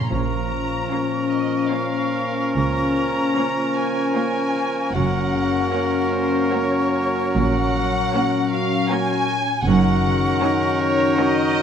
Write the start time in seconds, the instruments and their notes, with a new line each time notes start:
Already playing: harp F3 C#4 F4 A#4, violin section A#5
0.01 timpani A#2
0.09 double bass section A#1, harp A#2, cello section A#2, bassoon F3, french horn section A#3 C#4, clarinet C#4, oboe A#4, violin section A#5, flute C#6
0.51 harp F3
0.89 viola section A#3 C#4, harp C#4, violin section F4 A#4
1.31 harp F4, violin section D#5
1.70 viola section A#3 C#4, violin section F4 A#4 F5, harp A#4
2.13 harp F4
2.56 double bass section C#2, cello section C#3, harp C#3, violin section A#5
2.98 harp A#3
3.36 viola section A#3 C#4, harp C#4, violin section F4 A#4
3.76 harp F4, violin section G#5
4.15 viola section A#3 C#4, violin section F4 A#4 G#5, harp A#4
4.55 harp F4
4.94 double bass section F#1, harp F#2, cello section F#2, bassoon F#3, french horn section A#3 C#4, clarinet C#4, oboe A#4, violin section F#5, flute C#6
5.34 harp C#3
5.72 viola section A#3 C#4, harp C#4, violin section F#4 A#4
6.12 harp F#4, violin section C5
6.51 viola section A#3 C#4, violin section F#4 A#4 C#5, harp A#4
6.94 harp F#4
7.36 double bass section A#1, harp A#2, cello section A#2, french horn section F#3, violin section F#5
7.75 harp A#3
8.14 viola section A#3 C#4, harp C#4, violin section F#4 A#4
8.53 harp F#4, violin section F5
8.90 viola section A#3 C#4, violin section F#4 A#4 G#5, harp C#5
9.30 harp F#4
9.67 double bass section F#1, cello section F#2, harp F#2, french horn section D#3 C#4, bassoon F#3, clarinet D#4, oboe A#4, violin section F#5, flute C#6
10.05 harp C#3
10.42 viola section C#4 D#4, harp D#4, violin section F#4 A#4
10.80 harp F#4, violin section C#5
11.18 viola section C#4 D#4, violin section F#4 A#4 D#5, harp C#5
11.59 harp F#4